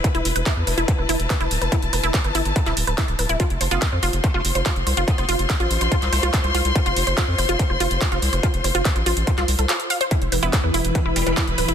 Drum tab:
HH |xxoxx-oxx-oxxxox|xxoxxxoxxxoxxxox|xxoxx-oxx-oxxxox|xxoxxxoxxxoxxxox|
CP |----x-------x---|----x----x--x---|----x-------x---|----x----x--x---|
BD |o---o---o---o---|o---o---o---o---|o---o---o---o---|o---o---o---o---|

HH |xxoxx-oxx-oxxxox|xxoxxxoxxxoxxxox|xxoxx-oxx-oxxxox|
CP |----x-------x---|----x----x--x---|----x-------x---|
BD |o---o---o---o---|o---o---o-------|o---o---o---o---|